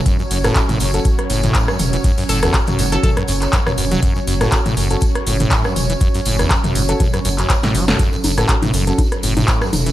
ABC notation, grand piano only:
X:1
M:4/4
L:1/16
Q:"Swing 16ths" 1/4=121
K:F#m
V:1 name="Grand piano"
z3 [CFA] z3 [CFA] z8 | z3 [CFA] z3 [CFA] z8 | z3 [CFA] z3 [CFA] z8 | z6 z [CFA] z6 z [CFA] |
z3 [CFA] z3 [CFA] z8 |]